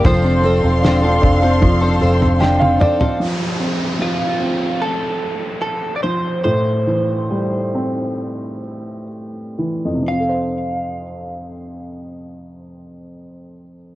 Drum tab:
SD |----o-------o---|----------------|----------------|----------------|
T1 |-------------o--|----------------|----------------|----------------|
T2 |--------------o-|----------------|----------------|----------------|
FT |o-----o-o--o---o|----------------|----------------|----------------|
BD |o-----o-o-------|----------------|----------------|----------------|